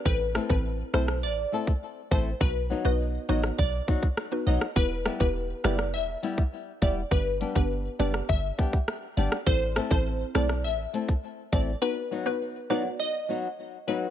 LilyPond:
<<
  \new Staff \with { instrumentName = "Synth pluck" } { \time 4/4 \key a \dorian \tempo 4 = 102 b'8 r16 b'16 r8 c''16 r16 d''8. r8. c''16 r16 | b'8 r16 dis''16 r8 dis''16 r16 d''8. r8. dis''16 r16 | b'8 r16 b'16 r8 d''16 r16 e''8. r8. d''16 r16 | b'8 r16 b'16 r8 d''16 r16 e''8. r8. d''16 r16 |
c''8 r16 c''16 r8 d''16 r16 e''8. r8. d''16 r16 | b'8 r16 b'16 r8 d''16 r16 dis''8. r8. b'16 r16 | }
  \new Staff \with { instrumentName = "Synth pluck" } { \time 4/4 \key a \dorian <c' e' a' c''>16 r8 <c' e' a' c''>8. <c' e' a' c''>8 r2 | <b dis' fis' b'>16 r8 <b dis' fis' b'>8. <b dis' fis' b'>8 r4 r16 <b dis' fis' b'>16 r8 | <b e' g' b'>16 r8 <b e' g' b'>8. <b e' g' b'>8 r2 | <b d' g' b'>16 r8 <b d' g' b'>8. <b d' g' b'>8 r2 |
<c' e' a' c''>16 r8 <c' e' a' c''>8. <c' e' a' c''>8 r2 | <b dis' fis' b'>16 r8 <b dis' fis' b'>8. <b dis' fis' b'>8 r2 | }
  \new Staff \with { instrumentName = "Nylon-string guitar" } { \time 4/4 \key a \dorian r8 <a c' e' a'>8 r8 <a c' e' a'>8 r8 <a c' e' a'>8 r8 <a c' e' a'>8 | r8 <fis b dis' fis'>8 r8 <fis b dis' fis'>8 r8 <fis b dis' fis'>8 r8 <fis b dis' fis'>8 | r8 <g b e' g'>8 r8 <g b e' g'>8 r8 <g b e' g'>8 r8 <g b e' g'>8 | r8 <g b d' g'>8 r8 <g b d' g'>8 r8 <g b d' g'>8 r8 <g b d' g'>8 |
r8 <a c' e' a'>8 r8 <a c' e' a'>8 r8 <a c' e' a'>8 r8 <a c' e' a'>8 | r8 <fis b dis' fis'>8 r8 <fis b dis' fis'>8 r8 <fis b dis' fis'>8 r8 <fis b dis' fis'>8 | }
  \new Staff \with { instrumentName = "808-style bass" } { \clef bass \time 4/4 \key a \dorian a,,8. a,,8. b,,8 a,,8 r4 a,,8 | b,,8. b,,8. a,,8 b,,8 r4 b,,16 r16 | e,,8. e,,8. fis,,8 e,,8 r4 e,,8 | g,,8. g,,8. fis,,8 g,,8 r4 g,,16 r16 |
a,,8. a,,8. b,,8 a,,8 r4 a,,8 | r1 | }
  \new DrumStaff \with { instrumentName = "Drums" } \drummode { \time 4/4 bd8 ss16 bd16 r8 ss16 ss16 r8. bd16 r8 bd8 | bd4 r8. ss16 bd8 bd16 bd16 ss8. ss16 | bd8 <hh ss>16 bd16 r8 <hh ss>16 ss16 r8 hh16 bd16 r8 <hh bd>8 | bd8 hh16 bd16 r8 hh16 ss16 bd8 <hh bd>16 bd16 ss8 hh16 ss16 |
bd8 <hh ss>16 bd16 r8 <hh ss>16 ss16 r8 hh16 bd16 r8 <hh bd>8 | r4 r4 r4 r4 | }
>>